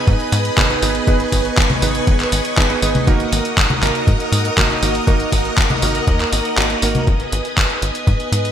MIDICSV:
0, 0, Header, 1, 5, 480
1, 0, Start_track
1, 0, Key_signature, 5, "minor"
1, 0, Tempo, 500000
1, 1031, Time_signature, 4, 2, 24, 8
1, 8177, End_track
2, 0, Start_track
2, 0, Title_t, "String machine"
2, 0, Program_c, 0, 50
2, 0, Note_on_c, 0, 71, 87
2, 0, Note_on_c, 0, 75, 78
2, 0, Note_on_c, 0, 80, 79
2, 0, Note_on_c, 0, 87, 93
2, 1011, Note_off_c, 0, 87, 0
2, 1029, Note_on_c, 0, 85, 95
2, 2912, Note_off_c, 0, 71, 0
2, 2912, Note_off_c, 0, 75, 0
2, 2912, Note_off_c, 0, 80, 0
2, 2931, Note_off_c, 0, 85, 0
2, 2947, Note_on_c, 0, 78, 76
2, 2948, Note_on_c, 0, 87, 97
2, 2949, Note_on_c, 0, 70, 88
2, 2949, Note_on_c, 0, 75, 79
2, 6751, Note_off_c, 0, 70, 0
2, 6751, Note_off_c, 0, 75, 0
2, 6751, Note_off_c, 0, 78, 0
2, 6751, Note_off_c, 0, 87, 0
2, 6790, Note_on_c, 0, 71, 80
2, 6790, Note_on_c, 0, 75, 76
2, 6790, Note_on_c, 0, 87, 88
2, 6791, Note_on_c, 0, 80, 76
2, 8177, Note_off_c, 0, 71, 0
2, 8177, Note_off_c, 0, 75, 0
2, 8177, Note_off_c, 0, 80, 0
2, 8177, Note_off_c, 0, 87, 0
2, 8177, End_track
3, 0, Start_track
3, 0, Title_t, "Electric grand piano"
3, 0, Program_c, 1, 2
3, 0, Note_on_c, 1, 59, 84
3, 0, Note_on_c, 1, 63, 83
3, 0, Note_on_c, 1, 68, 81
3, 0, Note_on_c, 1, 71, 98
3, 526, Note_off_c, 1, 59, 0
3, 526, Note_off_c, 1, 63, 0
3, 526, Note_off_c, 1, 68, 0
3, 526, Note_off_c, 1, 71, 0
3, 549, Note_on_c, 1, 59, 93
3, 549, Note_on_c, 1, 63, 86
3, 549, Note_on_c, 1, 68, 86
3, 549, Note_on_c, 1, 71, 102
3, 641, Note_off_c, 1, 59, 0
3, 641, Note_off_c, 1, 63, 0
3, 641, Note_off_c, 1, 68, 0
3, 641, Note_off_c, 1, 71, 0
3, 668, Note_on_c, 1, 71, 81
3, 669, Note_on_c, 1, 59, 73
3, 669, Note_on_c, 1, 63, 68
3, 669, Note_on_c, 1, 68, 68
3, 761, Note_off_c, 1, 59, 0
3, 761, Note_off_c, 1, 63, 0
3, 761, Note_off_c, 1, 68, 0
3, 761, Note_off_c, 1, 71, 0
3, 789, Note_on_c, 1, 63, 82
3, 789, Note_on_c, 1, 68, 81
3, 790, Note_on_c, 1, 59, 92
3, 790, Note_on_c, 1, 71, 97
3, 1001, Note_off_c, 1, 59, 0
3, 1001, Note_off_c, 1, 63, 0
3, 1001, Note_off_c, 1, 68, 0
3, 1001, Note_off_c, 1, 71, 0
3, 1030, Note_on_c, 1, 59, 96
3, 1030, Note_on_c, 1, 63, 87
3, 1030, Note_on_c, 1, 68, 91
3, 1030, Note_on_c, 1, 71, 107
3, 1721, Note_off_c, 1, 59, 0
3, 1721, Note_off_c, 1, 63, 0
3, 1721, Note_off_c, 1, 68, 0
3, 1721, Note_off_c, 1, 71, 0
3, 1749, Note_on_c, 1, 59, 86
3, 1749, Note_on_c, 1, 68, 78
3, 1750, Note_on_c, 1, 63, 77
3, 1750, Note_on_c, 1, 71, 99
3, 2446, Note_off_c, 1, 59, 0
3, 2446, Note_off_c, 1, 63, 0
3, 2446, Note_off_c, 1, 68, 0
3, 2446, Note_off_c, 1, 71, 0
3, 2469, Note_on_c, 1, 59, 94
3, 2469, Note_on_c, 1, 63, 87
3, 2469, Note_on_c, 1, 68, 83
3, 2469, Note_on_c, 1, 71, 102
3, 2561, Note_off_c, 1, 59, 0
3, 2561, Note_off_c, 1, 63, 0
3, 2561, Note_off_c, 1, 68, 0
3, 2561, Note_off_c, 1, 71, 0
3, 2589, Note_on_c, 1, 59, 73
3, 2589, Note_on_c, 1, 63, 69
3, 2589, Note_on_c, 1, 68, 68
3, 2589, Note_on_c, 1, 71, 81
3, 2681, Note_off_c, 1, 59, 0
3, 2681, Note_off_c, 1, 63, 0
3, 2681, Note_off_c, 1, 68, 0
3, 2681, Note_off_c, 1, 71, 0
3, 2709, Note_on_c, 1, 63, 83
3, 2709, Note_on_c, 1, 68, 81
3, 2709, Note_on_c, 1, 71, 100
3, 2710, Note_on_c, 1, 59, 88
3, 2921, Note_off_c, 1, 59, 0
3, 2921, Note_off_c, 1, 63, 0
3, 2921, Note_off_c, 1, 68, 0
3, 2921, Note_off_c, 1, 71, 0
3, 2949, Note_on_c, 1, 58, 99
3, 2949, Note_on_c, 1, 63, 89
3, 2949, Note_on_c, 1, 66, 92
3, 2950, Note_on_c, 1, 70, 109
3, 3641, Note_off_c, 1, 58, 0
3, 3641, Note_off_c, 1, 63, 0
3, 3641, Note_off_c, 1, 66, 0
3, 3641, Note_off_c, 1, 70, 0
3, 3669, Note_on_c, 1, 58, 87
3, 3669, Note_on_c, 1, 63, 83
3, 3669, Note_on_c, 1, 66, 83
3, 3669, Note_on_c, 1, 70, 99
3, 4366, Note_off_c, 1, 58, 0
3, 4366, Note_off_c, 1, 63, 0
3, 4366, Note_off_c, 1, 66, 0
3, 4366, Note_off_c, 1, 70, 0
3, 4389, Note_on_c, 1, 70, 99
3, 4390, Note_on_c, 1, 58, 92
3, 4390, Note_on_c, 1, 63, 84
3, 4390, Note_on_c, 1, 66, 87
3, 4481, Note_off_c, 1, 58, 0
3, 4481, Note_off_c, 1, 63, 0
3, 4481, Note_off_c, 1, 66, 0
3, 4481, Note_off_c, 1, 70, 0
3, 4509, Note_on_c, 1, 58, 75
3, 4509, Note_on_c, 1, 63, 68
3, 4509, Note_on_c, 1, 66, 71
3, 4510, Note_on_c, 1, 70, 82
3, 4601, Note_off_c, 1, 58, 0
3, 4601, Note_off_c, 1, 63, 0
3, 4601, Note_off_c, 1, 66, 0
3, 4601, Note_off_c, 1, 70, 0
3, 4630, Note_on_c, 1, 58, 87
3, 4630, Note_on_c, 1, 63, 81
3, 4630, Note_on_c, 1, 66, 80
3, 4630, Note_on_c, 1, 70, 95
3, 4841, Note_off_c, 1, 58, 0
3, 4842, Note_off_c, 1, 63, 0
3, 4842, Note_off_c, 1, 66, 0
3, 4842, Note_off_c, 1, 70, 0
3, 4870, Note_on_c, 1, 58, 99
3, 4870, Note_on_c, 1, 63, 92
3, 4870, Note_on_c, 1, 66, 87
3, 4870, Note_on_c, 1, 70, 105
3, 5561, Note_off_c, 1, 58, 0
3, 5561, Note_off_c, 1, 63, 0
3, 5561, Note_off_c, 1, 66, 0
3, 5561, Note_off_c, 1, 70, 0
3, 5590, Note_on_c, 1, 58, 89
3, 5590, Note_on_c, 1, 63, 80
3, 5590, Note_on_c, 1, 66, 77
3, 5590, Note_on_c, 1, 70, 95
3, 6286, Note_off_c, 1, 58, 0
3, 6286, Note_off_c, 1, 63, 0
3, 6286, Note_off_c, 1, 66, 0
3, 6286, Note_off_c, 1, 70, 0
3, 6310, Note_on_c, 1, 58, 94
3, 6310, Note_on_c, 1, 63, 83
3, 6310, Note_on_c, 1, 66, 85
3, 6310, Note_on_c, 1, 70, 101
3, 6401, Note_off_c, 1, 58, 0
3, 6401, Note_off_c, 1, 63, 0
3, 6401, Note_off_c, 1, 66, 0
3, 6401, Note_off_c, 1, 70, 0
3, 6430, Note_on_c, 1, 58, 73
3, 6430, Note_on_c, 1, 63, 69
3, 6430, Note_on_c, 1, 66, 69
3, 6430, Note_on_c, 1, 70, 80
3, 6521, Note_off_c, 1, 58, 0
3, 6521, Note_off_c, 1, 63, 0
3, 6521, Note_off_c, 1, 66, 0
3, 6521, Note_off_c, 1, 70, 0
3, 6549, Note_on_c, 1, 58, 87
3, 6549, Note_on_c, 1, 63, 84
3, 6549, Note_on_c, 1, 66, 82
3, 6549, Note_on_c, 1, 70, 97
3, 6761, Note_off_c, 1, 58, 0
3, 6761, Note_off_c, 1, 63, 0
3, 6761, Note_off_c, 1, 66, 0
3, 6761, Note_off_c, 1, 70, 0
3, 8177, End_track
4, 0, Start_track
4, 0, Title_t, "Analog synth bass"
4, 0, Program_c, 2, 38
4, 71, Note_on_c, 2, 44, 82
4, 158, Note_off_c, 2, 44, 0
4, 310, Note_on_c, 2, 44, 90
4, 484, Note_off_c, 2, 44, 0
4, 550, Note_on_c, 2, 32, 98
4, 724, Note_off_c, 2, 32, 0
4, 788, Note_on_c, 2, 32, 105
4, 963, Note_off_c, 2, 32, 0
4, 1030, Note_on_c, 2, 32, 98
4, 1204, Note_off_c, 2, 32, 0
4, 1270, Note_on_c, 2, 32, 85
4, 1444, Note_off_c, 2, 32, 0
4, 1510, Note_on_c, 2, 32, 103
4, 1684, Note_off_c, 2, 32, 0
4, 1748, Note_on_c, 2, 32, 96
4, 1923, Note_off_c, 2, 32, 0
4, 1989, Note_on_c, 2, 32, 90
4, 2164, Note_off_c, 2, 32, 0
4, 2228, Note_on_c, 2, 32, 83
4, 2316, Note_off_c, 2, 32, 0
4, 2470, Note_on_c, 2, 32, 100
4, 2644, Note_off_c, 2, 32, 0
4, 2708, Note_on_c, 2, 32, 81
4, 2883, Note_off_c, 2, 32, 0
4, 2950, Note_on_c, 2, 32, 98
4, 3124, Note_off_c, 2, 32, 0
4, 3189, Note_on_c, 2, 32, 92
4, 3276, Note_off_c, 2, 32, 0
4, 3429, Note_on_c, 2, 32, 101
4, 3517, Note_off_c, 2, 32, 0
4, 3668, Note_on_c, 2, 32, 95
4, 3756, Note_off_c, 2, 32, 0
4, 3910, Note_on_c, 2, 44, 82
4, 3997, Note_off_c, 2, 44, 0
4, 4148, Note_on_c, 2, 44, 90
4, 4323, Note_off_c, 2, 44, 0
4, 4389, Note_on_c, 2, 32, 95
4, 4564, Note_off_c, 2, 32, 0
4, 4629, Note_on_c, 2, 32, 98
4, 4803, Note_off_c, 2, 32, 0
4, 4870, Note_on_c, 2, 32, 98
4, 5044, Note_off_c, 2, 32, 0
4, 5110, Note_on_c, 2, 32, 86
4, 5284, Note_off_c, 2, 32, 0
4, 5350, Note_on_c, 2, 32, 104
4, 5524, Note_off_c, 2, 32, 0
4, 5590, Note_on_c, 2, 32, 97
4, 5764, Note_off_c, 2, 32, 0
4, 5830, Note_on_c, 2, 39, 82
4, 6004, Note_off_c, 2, 39, 0
4, 6070, Note_on_c, 2, 32, 83
4, 6157, Note_off_c, 2, 32, 0
4, 6310, Note_on_c, 2, 32, 106
4, 6484, Note_off_c, 2, 32, 0
4, 6550, Note_on_c, 2, 32, 103
4, 6724, Note_off_c, 2, 32, 0
4, 6790, Note_on_c, 2, 32, 96
4, 6964, Note_off_c, 2, 32, 0
4, 7030, Note_on_c, 2, 32, 89
4, 7117, Note_off_c, 2, 32, 0
4, 7269, Note_on_c, 2, 32, 93
4, 7356, Note_off_c, 2, 32, 0
4, 7508, Note_on_c, 2, 32, 90
4, 7596, Note_off_c, 2, 32, 0
4, 7749, Note_on_c, 2, 44, 76
4, 7837, Note_off_c, 2, 44, 0
4, 7988, Note_on_c, 2, 44, 87
4, 8163, Note_off_c, 2, 44, 0
4, 8177, End_track
5, 0, Start_track
5, 0, Title_t, "Drums"
5, 71, Note_on_c, 9, 36, 120
5, 72, Note_on_c, 9, 42, 63
5, 167, Note_off_c, 9, 36, 0
5, 168, Note_off_c, 9, 42, 0
5, 192, Note_on_c, 9, 42, 38
5, 288, Note_off_c, 9, 42, 0
5, 311, Note_on_c, 9, 46, 110
5, 407, Note_off_c, 9, 46, 0
5, 432, Note_on_c, 9, 42, 37
5, 528, Note_off_c, 9, 42, 0
5, 551, Note_on_c, 9, 36, 117
5, 551, Note_on_c, 9, 39, 121
5, 551, Note_on_c, 9, 42, 65
5, 551, Note_on_c, 9, 63, 65
5, 647, Note_off_c, 9, 36, 0
5, 647, Note_off_c, 9, 39, 0
5, 647, Note_off_c, 9, 42, 0
5, 647, Note_off_c, 9, 63, 0
5, 673, Note_on_c, 9, 42, 39
5, 769, Note_off_c, 9, 42, 0
5, 792, Note_on_c, 9, 46, 105
5, 888, Note_off_c, 9, 46, 0
5, 911, Note_on_c, 9, 42, 38
5, 1007, Note_off_c, 9, 42, 0
5, 1030, Note_on_c, 9, 36, 110
5, 1032, Note_on_c, 9, 42, 66
5, 1126, Note_off_c, 9, 36, 0
5, 1128, Note_off_c, 9, 42, 0
5, 1152, Note_on_c, 9, 42, 39
5, 1248, Note_off_c, 9, 42, 0
5, 1270, Note_on_c, 9, 36, 58
5, 1271, Note_on_c, 9, 46, 111
5, 1366, Note_off_c, 9, 36, 0
5, 1367, Note_off_c, 9, 46, 0
5, 1391, Note_on_c, 9, 42, 41
5, 1487, Note_off_c, 9, 42, 0
5, 1510, Note_on_c, 9, 36, 117
5, 1511, Note_on_c, 9, 39, 116
5, 1511, Note_on_c, 9, 42, 65
5, 1606, Note_off_c, 9, 36, 0
5, 1607, Note_off_c, 9, 39, 0
5, 1607, Note_off_c, 9, 42, 0
5, 1631, Note_on_c, 9, 42, 42
5, 1631, Note_on_c, 9, 63, 88
5, 1727, Note_off_c, 9, 42, 0
5, 1727, Note_off_c, 9, 63, 0
5, 1750, Note_on_c, 9, 46, 113
5, 1846, Note_off_c, 9, 46, 0
5, 1870, Note_on_c, 9, 42, 43
5, 1966, Note_off_c, 9, 42, 0
5, 1990, Note_on_c, 9, 36, 114
5, 1990, Note_on_c, 9, 42, 68
5, 2086, Note_off_c, 9, 36, 0
5, 2086, Note_off_c, 9, 42, 0
5, 2110, Note_on_c, 9, 39, 37
5, 2110, Note_on_c, 9, 42, 41
5, 2206, Note_off_c, 9, 39, 0
5, 2206, Note_off_c, 9, 42, 0
5, 2230, Note_on_c, 9, 46, 114
5, 2326, Note_off_c, 9, 46, 0
5, 2351, Note_on_c, 9, 42, 39
5, 2447, Note_off_c, 9, 42, 0
5, 2470, Note_on_c, 9, 36, 117
5, 2471, Note_on_c, 9, 39, 112
5, 2471, Note_on_c, 9, 42, 66
5, 2566, Note_off_c, 9, 36, 0
5, 2567, Note_off_c, 9, 39, 0
5, 2567, Note_off_c, 9, 42, 0
5, 2591, Note_on_c, 9, 42, 40
5, 2687, Note_off_c, 9, 42, 0
5, 2711, Note_on_c, 9, 46, 113
5, 2807, Note_off_c, 9, 46, 0
5, 2832, Note_on_c, 9, 42, 41
5, 2832, Note_on_c, 9, 63, 67
5, 2928, Note_off_c, 9, 42, 0
5, 2928, Note_off_c, 9, 63, 0
5, 2950, Note_on_c, 9, 36, 113
5, 2952, Note_on_c, 9, 42, 70
5, 3046, Note_off_c, 9, 36, 0
5, 3048, Note_off_c, 9, 42, 0
5, 3072, Note_on_c, 9, 42, 42
5, 3168, Note_off_c, 9, 42, 0
5, 3192, Note_on_c, 9, 46, 114
5, 3288, Note_off_c, 9, 46, 0
5, 3313, Note_on_c, 9, 42, 42
5, 3409, Note_off_c, 9, 42, 0
5, 3430, Note_on_c, 9, 36, 113
5, 3433, Note_on_c, 9, 39, 117
5, 3433, Note_on_c, 9, 42, 69
5, 3526, Note_off_c, 9, 36, 0
5, 3529, Note_off_c, 9, 39, 0
5, 3529, Note_off_c, 9, 42, 0
5, 3552, Note_on_c, 9, 42, 43
5, 3552, Note_on_c, 9, 63, 88
5, 3648, Note_off_c, 9, 42, 0
5, 3648, Note_off_c, 9, 63, 0
5, 3673, Note_on_c, 9, 39, 70
5, 3673, Note_on_c, 9, 46, 114
5, 3769, Note_off_c, 9, 39, 0
5, 3769, Note_off_c, 9, 46, 0
5, 3793, Note_on_c, 9, 42, 43
5, 3889, Note_off_c, 9, 42, 0
5, 3910, Note_on_c, 9, 36, 111
5, 3913, Note_on_c, 9, 42, 72
5, 4006, Note_off_c, 9, 36, 0
5, 4009, Note_off_c, 9, 42, 0
5, 4033, Note_on_c, 9, 42, 42
5, 4129, Note_off_c, 9, 42, 0
5, 4152, Note_on_c, 9, 46, 111
5, 4248, Note_off_c, 9, 46, 0
5, 4272, Note_on_c, 9, 42, 43
5, 4368, Note_off_c, 9, 42, 0
5, 4390, Note_on_c, 9, 36, 110
5, 4392, Note_on_c, 9, 39, 116
5, 4392, Note_on_c, 9, 42, 68
5, 4392, Note_on_c, 9, 63, 63
5, 4486, Note_off_c, 9, 36, 0
5, 4488, Note_off_c, 9, 39, 0
5, 4488, Note_off_c, 9, 42, 0
5, 4488, Note_off_c, 9, 63, 0
5, 4513, Note_on_c, 9, 42, 41
5, 4609, Note_off_c, 9, 42, 0
5, 4633, Note_on_c, 9, 46, 113
5, 4729, Note_off_c, 9, 46, 0
5, 4752, Note_on_c, 9, 42, 41
5, 4848, Note_off_c, 9, 42, 0
5, 4870, Note_on_c, 9, 36, 115
5, 4872, Note_on_c, 9, 42, 71
5, 4966, Note_off_c, 9, 36, 0
5, 4968, Note_off_c, 9, 42, 0
5, 4992, Note_on_c, 9, 42, 43
5, 5088, Note_off_c, 9, 42, 0
5, 5110, Note_on_c, 9, 36, 60
5, 5112, Note_on_c, 9, 46, 110
5, 5206, Note_off_c, 9, 36, 0
5, 5208, Note_off_c, 9, 46, 0
5, 5233, Note_on_c, 9, 42, 42
5, 5329, Note_off_c, 9, 42, 0
5, 5351, Note_on_c, 9, 36, 121
5, 5353, Note_on_c, 9, 39, 116
5, 5353, Note_on_c, 9, 42, 72
5, 5447, Note_off_c, 9, 36, 0
5, 5449, Note_off_c, 9, 39, 0
5, 5449, Note_off_c, 9, 42, 0
5, 5472, Note_on_c, 9, 42, 44
5, 5472, Note_on_c, 9, 63, 84
5, 5568, Note_off_c, 9, 42, 0
5, 5568, Note_off_c, 9, 63, 0
5, 5591, Note_on_c, 9, 46, 111
5, 5687, Note_off_c, 9, 46, 0
5, 5712, Note_on_c, 9, 42, 45
5, 5808, Note_off_c, 9, 42, 0
5, 5831, Note_on_c, 9, 36, 114
5, 5832, Note_on_c, 9, 42, 73
5, 5927, Note_off_c, 9, 36, 0
5, 5928, Note_off_c, 9, 42, 0
5, 5953, Note_on_c, 9, 39, 37
5, 5953, Note_on_c, 9, 42, 41
5, 6049, Note_off_c, 9, 39, 0
5, 6049, Note_off_c, 9, 42, 0
5, 6072, Note_on_c, 9, 46, 109
5, 6168, Note_off_c, 9, 46, 0
5, 6193, Note_on_c, 9, 42, 41
5, 6289, Note_off_c, 9, 42, 0
5, 6312, Note_on_c, 9, 39, 118
5, 6312, Note_on_c, 9, 42, 69
5, 6408, Note_off_c, 9, 39, 0
5, 6408, Note_off_c, 9, 42, 0
5, 6431, Note_on_c, 9, 42, 43
5, 6527, Note_off_c, 9, 42, 0
5, 6551, Note_on_c, 9, 46, 111
5, 6647, Note_off_c, 9, 46, 0
5, 6671, Note_on_c, 9, 42, 43
5, 6671, Note_on_c, 9, 63, 60
5, 6767, Note_off_c, 9, 42, 0
5, 6767, Note_off_c, 9, 63, 0
5, 6790, Note_on_c, 9, 36, 118
5, 6790, Note_on_c, 9, 42, 69
5, 6886, Note_off_c, 9, 36, 0
5, 6886, Note_off_c, 9, 42, 0
5, 6910, Note_on_c, 9, 42, 41
5, 7006, Note_off_c, 9, 42, 0
5, 7032, Note_on_c, 9, 42, 96
5, 7128, Note_off_c, 9, 42, 0
5, 7152, Note_on_c, 9, 42, 39
5, 7248, Note_off_c, 9, 42, 0
5, 7270, Note_on_c, 9, 36, 116
5, 7271, Note_on_c, 9, 39, 118
5, 7271, Note_on_c, 9, 42, 68
5, 7366, Note_off_c, 9, 36, 0
5, 7367, Note_off_c, 9, 39, 0
5, 7367, Note_off_c, 9, 42, 0
5, 7390, Note_on_c, 9, 42, 40
5, 7486, Note_off_c, 9, 42, 0
5, 7511, Note_on_c, 9, 42, 94
5, 7607, Note_off_c, 9, 42, 0
5, 7632, Note_on_c, 9, 42, 43
5, 7728, Note_off_c, 9, 42, 0
5, 7749, Note_on_c, 9, 36, 114
5, 7751, Note_on_c, 9, 42, 66
5, 7845, Note_off_c, 9, 36, 0
5, 7847, Note_off_c, 9, 42, 0
5, 7872, Note_on_c, 9, 42, 41
5, 7968, Note_off_c, 9, 42, 0
5, 7992, Note_on_c, 9, 42, 94
5, 8088, Note_off_c, 9, 42, 0
5, 8112, Note_on_c, 9, 42, 40
5, 8177, Note_off_c, 9, 42, 0
5, 8177, End_track
0, 0, End_of_file